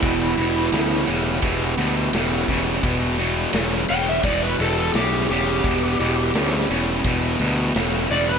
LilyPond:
<<
  \new Staff \with { instrumentName = "Electric slide guitar" } { \time 4/4 \key e \minor \tempo 4 = 86 e'4. r2 r8 | r4. g''16 e''16 d''16 b'16 a'16 a'16 g'8 g'8~ | g'4. r2 d''16 b'16 | }
  \new Staff \with { instrumentName = "Tonewheel organ" } { \time 4/4 \key e \minor <b e' g'>1 | <g b e'>1 | <g b e'>1 | }
  \new Staff \with { instrumentName = "Distorted electric guitar" } { \clef bass \time 4/4 \key e \minor <e, b,>8 <e, b,>8 <e, cis>8 <e, cis>8 <e, b,>8 <e, b,>8 <e, cis>8 <e, cis>8 | <e, b,>8 <e, b,>8 <e, cis>8 <e, cis>8 <e, b,>8 <e, b,>8 <e, cis>8 <e, cis>8 | <e, b,>8 <e, b,>8 <e, cis>8 <e, cis>8 <e, b,>8 <e, b,>8 <e, cis>8 <e, cis>8 | }
  \new Staff \with { instrumentName = "Fingered electric bass" } { \clef bass \time 4/4 \key e \minor e,,8 e,,8 d,8 e,,8 e,,8 d,8 e,,8 e,,8 | e,,4 e,,8 e,,8 e,,8 e,,8 b,,8 e,,8 | e,,8 e,,8 d,8 e,,8 e,,8 d,8 e,,8 e,,8 | }
  \new DrumStaff \with { instrumentName = "Drums" } \drummode { \time 4/4 <bd cymr>8 cymr8 <cymr sn>8 cymr8 <bd cymr>8 cymr8 <cymr sn>8 <bd cymr>8 | <bd cymr>8 cymr8 <cymr sn>8 cymr8 <bd cymr>8 cymr8 <cymr sn>8 cymr8 | <bd cymr>8 cymr8 <cymr sn>8 cymr8 <bd cymr>8 cymr8 <cymr sn>8 cymr8 | }
>>